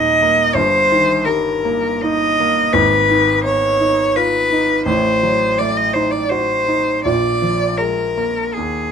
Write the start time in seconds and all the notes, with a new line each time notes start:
Already playing: D#1 D#2 A#2 G3 A#3 D#4 D#5
0.22 A#3
0.54 G1 G2 C5
0.92 D#3
1.24 G3 A#4
1.65 A#3
2.01 D#4 D#5
2.40 A#3
2.73 G#1 G#2 B4
3.11 D#3
3.44 B3 C#5
3.81 D#4
4.16 F4 B4
4.52 D#4
4.86 A1 A2 C5
5.23 F#3
5.59 A3 D5
5.77 D#5
5.93 D#4 C5
6.11 D5
6.29 F#4 C5
6.68 D#4
7.04 A#1 A#2 D5
7.42 F3
7.77 G#3 A#4
8.17 A#3
8.54 D#2 G#4